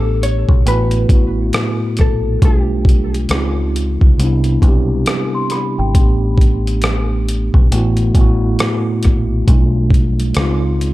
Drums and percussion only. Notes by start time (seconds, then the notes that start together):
0.23 closed hi-hat
0.49 kick
0.67 closed hi-hat
0.91 closed hi-hat
1.09 kick, closed hi-hat
1.53 cross-stick, closed hi-hat
1.97 kick, cross-stick, closed hi-hat
2.42 kick, closed hi-hat
2.85 kick, closed hi-hat
3.14 closed hi-hat
3.29 cross-stick, closed hi-hat
3.76 closed hi-hat
4.01 kick
4.20 closed hi-hat
4.44 closed hi-hat
4.62 kick, closed hi-hat
5.06 cross-stick, closed hi-hat
5.50 cross-stick, closed hi-hat
5.95 kick, closed hi-hat
6.38 kick, closed hi-hat
6.67 closed hi-hat
6.82 cross-stick, closed hi-hat
7.29 closed hi-hat
7.54 kick
7.72 closed hi-hat
7.97 closed hi-hat
8.15 kick, closed hi-hat
8.59 cross-stick, closed hi-hat
9.03 kick, cross-stick, closed hi-hat
9.48 kick, closed hi-hat
9.90 kick, closed hi-hat
10.20 closed hi-hat
10.35 cross-stick, closed hi-hat
10.81 closed hi-hat